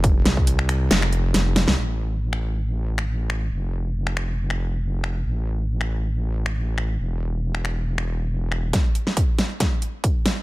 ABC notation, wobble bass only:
X:1
M:4/4
L:1/16
Q:"Swing 16ths" 1/4=138
K:Flyd
V:1 name="Wobble bass" clef=bass
F,,, F,,, C,,6 F,,,4 F,,,3 C,, | A,,,16 | F,,,16 | A,,,16 |
E,,,16 | z16 |]